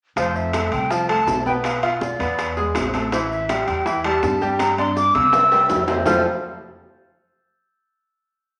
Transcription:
0.16 0.68 F1 medium
0.16 0.47 F3 medium
0.16 0.47 F4 medium
0.16 0.37 C5 medium
0.16 high bongo medium
0.16 high conga soft
0.16 high timbale medium
0.16 maracas medium
0.35 0.74 E5 medium
0.35 high conga soft
0.35 maracas soft
0.53 0.84 A3 medium
0.53 0.84 A4 medium
0.53 high bongo medium
0.53 high conga medium
0.53 high timbale medium
0.53 maracas medium
0.72 1.23 C2 medium
0.72 0.92 G5 medium
0.72 high timbale medium
0.72 maracas soft
0.90 1.06 F3 medium
0.90 1.06 F4 medium
0.90 1.08 A5 medium
0.90 high bongo medium
0.90 high conga soft
0.90 maracas medium
1.09 1.39 A3 medium
1.09 1.39 A4 medium
1.09 1.43 A5 loud
1.09 high conga soft
1.09 high timbale medium
1.09 maracas soft
1.27 2.14 B1 medium
1.27 high bongo medium
1.27 low bongo medium
1.27 high conga medium
1.27 low timbale medium
1.27 maracas medium
1.46 1.76 B3 medium
1.46 1.77 B4 medium
1.46 1.52 G5 loud
1.46 high conga medium
1.46 maracas soft
1.64 1.71 F5 medium
1.64 high bongo medium
1.64 high conga soft
1.64 high timbale medium
1.64 maracas medium
1.83 2.13 F4 medium
1.83 1.89 E5 medium
1.83 2.13 F5 medium
1.83 high conga soft
1.83 high timbale medium
1.83 maracas soft
2.01 2.71 D5 medium
2.01 high bongo medium
2.01 high conga medium
2.01 maracas medium
2.19 2.71 E2 medium
2.19 2.50 B3 medium
2.19 2.50 B4 medium
2.19 high bongo soft
2.19 high conga soft
2.19 high timbale medium
2.19 maracas soft
2.39 high bongo medium
2.39 high conga soft
2.39 high timbale medium
2.39 maracas medium
2.57 2.87 G#3 medium
2.57 2.87 G#4 medium
2.57 high bongo soft
2.57 high conga soft
2.57 maracas soft
2.75 3.61 A1 medium
2.75 high bongo medium
2.75 low bongo medium
2.75 high conga medium
2.75 high timbale medium
2.75 low timbale medium
2.75 maracas medium
2.94 3.09 A3 medium
2.94 3.09 A4 medium
2.94 high bongo soft
2.94 high conga medium
2.94 high timbale medium
2.94 maracas soft
3.12 3.43 E3 medium
3.12 3.43 E4 medium
3.12 3.18 C5 medium
3.12 high bongo medium
3.12 high conga soft
3.12 high timbale medium
3.12 maracas medium
3.30 3.68 E5 medium
3.30 high conga soft
3.30 maracas soft
3.49 3.79 G3 medium
3.49 3.79 G4 medium
3.49 high bongo medium
3.49 high conga medium
3.49 high timbale medium
3.49 maracas medium
3.67 4.19 E2 medium
3.67 4.04 G5 medium
3.67 high timbale medium
3.67 maracas soft
3.86 4.01 E3 medium
3.86 4.01 E4 medium
3.86 high bongo medium
3.86 high conga soft
3.86 maracas medium
4.04 4.34 G3 medium
4.04 4.35 G4 medium
4.04 4.55 A5 loud
4.04 high conga soft
4.04 high timbale medium
4.04 maracas soft
4.23 5.09 G2 medium
4.23 high bongo medium
4.23 low bongo medium
4.23 high conga medium
4.23 maracas medium
4.41 4.71 G3 medium
4.41 4.72 G4 medium
4.41 high conga medium
4.41 maracas soft
4.59 4.77 A#5 loud
4.59 high bongo medium
4.59 high conga medium
4.59 high timbale medium
4.59 maracas medium
4.78 5.09 D4 medium
4.78 5.09 D5 medium
4.78 4.95 C6 medium
4.78 high conga medium
4.78 high timbale medium
4.78 maracas soft
4.96 5.16 D6 loud
4.96 high bongo medium
4.96 maracas medium
5.14 5.66 C2 medium
5.14 5.45 A#3 medium
5.14 5.45 A#4 medium
5.14 5.88 E6 loud
5.14 high bongo soft
5.14 high conga medium
5.14 high timbale medium
5.14 maracas soft
5.33 high bongo medium
5.33 low conga medium
5.33 high timbale medium
5.33 maracas medium
5.51 5.81 G3 medium
5.51 5.82 G4 medium
5.51 high timbale medium
5.51 maracas soft
5.69 6.02 F2 medium
5.69 low bongo medium
5.69 low conga medium
5.69 low timbale medium
5.69 maracas medium
5.88 6.03 C4 medium
5.88 6.03 C5 medium
5.88 low bongo medium
5.88 low conga medium
5.88 low timbale loud
5.88 maracas soft
6.06 6.23 F1 medium
6.06 6.23 F3 medium
6.06 6.23 C4 medium
6.06 6.23 E4 medium
6.06 6.23 F4 medium
6.06 6.24 A4 medium
6.06 6.24 C5 medium
6.06 6.23 F6 medium
6.06 low bongo loud
6.06 low conga medium
6.06 low timbale medium
6.06 maracas loud

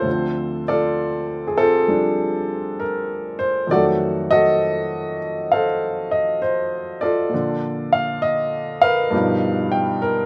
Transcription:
0.00 3.66 D2 soft
0.00 0.68 F4 medium
0.00 0.67 A4 medium
0.00 0.63 C5 medium
0.05 3.68 D3 soft
0.05 1.85 F3 soft
0.13 1.57 C4 soft
0.68 1.57 F4 medium
0.68 1.56 A4 medium
0.68 1.51 D5 medium
1.47 1.56 G#4 medium
1.58 3.35 C4 medium
1.58 3.35 F4 medium
1.58 2.82 A4 medium
1.87 3.68 F3 soft
1.87 3.69 G3 soft
1.87 3.70 D4 soft
2.80 3.40 A#4 medium
3.39 3.70 C5 medium
3.67 7.30 F2 soft
3.67 7.31 D#3 soft
3.67 7.32 F#3 soft
3.71 7.33 A3 medium
3.71 4.31 F#4 medium
3.71 4.31 A4 medium
3.71 3.84 D5 medium
4.31 6.07 F#4 medium
4.31 5.52 A4 medium
4.31 5.16 D#5 loud
5.52 7.01 A4 medium
5.52 6.40 C5 medium
5.52 5.65 F5 medium
6.11 6.39 D#5 medium
6.42 7.03 C5 medium
7.01 8.79 F4 medium
7.01 8.79 A4 medium
7.01 7.94 D5 medium
7.29 9.12 A#2 soft
7.29 9.10 F3 soft
7.34 9.14 D3 medium
7.93 8.24 F5 medium
8.22 8.83 D#5 medium
8.82 10.00 A#4 medium
8.82 10.26 B4 medium
8.82 9.68 F5 loud
9.10 10.26 G2 medium
9.10 10.26 F3 medium
9.10 10.26 G3 medium
9.14 10.26 B2 medium
9.14 10.26 D#4 medium
9.72 10.01 G5 medium
10.02 10.26 A#4 medium

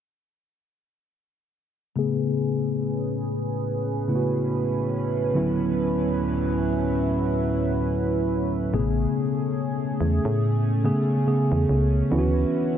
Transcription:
1.96 8.69 A2 medium
1.96 4.04 C#3 medium
1.96 4.04 A3 medium
1.96 4.05 B3 medium
1.96 8.69 C#4 medium
1.96 4.05 G#4 medium
1.96 8.69 B4 medium
4.08 5.35 C#3 medium
4.08 5.35 A3 soft
4.08 5.34 B3 soft
4.08 4.16 E4 soft
4.16 5.39 F#4 medium
5.34 8.70 D2 medium
5.34 8.68 D3 medium
5.34 8.69 F#3 medium
5.34 8.70 F#3 medium
5.34 8.69 B3 medium
5.34 8.70 C#4 medium
5.34 8.70 E4 medium
8.73 9.07 A1 loud
8.73 8.81 B2 medium
8.73 12.08 A3 medium
8.73 10.10 A3 medium
8.73 10.10 B3 medium
8.73 12.78 C#4 medium
8.73 12.08 G#4 medium
8.73 10.10 G#4 medium
8.79 10.13 C#3 medium
10.01 10.20 E2 medium
10.25 10.92 A2 medium
10.84 11.19 C#3 medium
10.84 11.20 A3 medium
10.84 11.20 B3 medium
10.84 11.20 G#4 medium
11.26 11.97 C#3 medium
11.26 11.97 A3 medium
11.26 11.97 B3 medium
11.26 11.98 G#4 medium
11.52 11.66 E2 medium
11.69 12.03 C#2 medium
12.10 12.45 D2 loud
12.10 12.78 D3 medium
12.10 12.78 E3 medium
12.10 12.78 B3 medium
12.10 12.78 C#4 medium
12.10 12.19 E4 medium
12.10 12.78 E4 medium
12.10 12.78 F#4 medium
12.10 12.78 B4 medium
12.18 12.78 F#4 medium

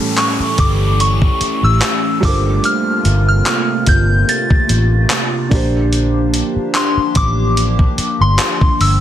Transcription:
0.00 2.18 A2 medium
0.00 2.20 E3 medium
0.00 2.18 G3 medium
0.00 5.48 A3 medium
0.00 2.19 C#4 medium
0.00 2.20 C#4 medium
0.00 2.20 E4 medium
0.00 2.20 G4 medium
0.00 2.20 A4 medium
0.00 downlifter medium
0.17 0.60 C#6 medium
0.17 clap loud
0.17 closed hi-hat medium
0.40 muted fingered electric bass stroke soft
0.58 1.29 G1 medium
0.58 1.01 D6 medium
0.58 kick medium
0.58 closed hi-hat medium
1.00 1.65 C#6 medium
1.00 closed hi-hat medium
1.22 kick medium
1.41 muted fingered electric bass stroke soft
1.41 closed hi-hat medium
1.63 1.79 A1 medium
1.63 2.20 E6 medium
1.82 clap loud
1.82 closed hi-hat medium
2.21 2.58 G1 loud
2.21 5.48 C3 medium
2.21 5.46 G3 medium
2.21 5.48 A#3 medium
2.21 5.47 D4 medium
2.21 5.48 F4 medium
2.21 5.47 F4 medium
2.21 5.48 A4 medium
2.21 kick loud
2.21 open hi-hat medium
2.25 5.49 A#4 medium
2.25 5.49 C5 medium
2.25 2.66 D6 medium
2.64 3.27 F6 loud
2.64 closed hi-hat medium
3.05 3.40 G1 loud
3.05 closed hi-hat medium
3.28 3.90 F6 loud
3.46 clap loud
3.46 closed hi-hat medium
3.86 4.22 G1 medium
3.86 4.30 G6 loud
3.86 kick medium
3.86 closed hi-hat medium
4.29 5.48 A6 loud
4.29 closed hi-hat medium
4.50 kick loud
4.69 5.05 A1 loud
4.69 closed hi-hat medium
5.10 clap loud
5.10 closed hi-hat medium
5.49 6.41 A#1 medium
5.49 8.75 D3 medium
5.49 9.01 F3 medium
5.49 8.76 A#3 medium
5.49 9.01 A#3 medium
5.49 9.01 D4 medium
5.49 8.76 D4 medium
5.49 9.01 G4 medium
5.49 kick loud
5.49 open hi-hat medium
5.53 8.77 G4 medium
5.53 8.78 C5 medium
5.93 closed hi-hat medium
6.34 closed hi-hat medium
6.56 muted fingered electric bass stroke soft
6.75 7.18 C6 medium
6.75 clap loud
6.75 closed hi-hat medium
6.97 muted fingered electric bass stroke soft
7.15 7.86 A1 medium
7.15 8.24 D6 medium
7.15 kick medium
7.15 closed hi-hat medium
7.57 closed hi-hat medium
7.79 kick loud
7.98 muted fingered electric bass stroke soft
7.98 closed hi-hat medium
8.20 8.37 G1 medium
8.20 8.83 C6 medium
8.39 clap loud
8.39 closed hi-hat medium
8.61 kick loud
8.80 9.01 G1 medium
8.80 9.01 E6 loud
8.80 open hi-hat medium

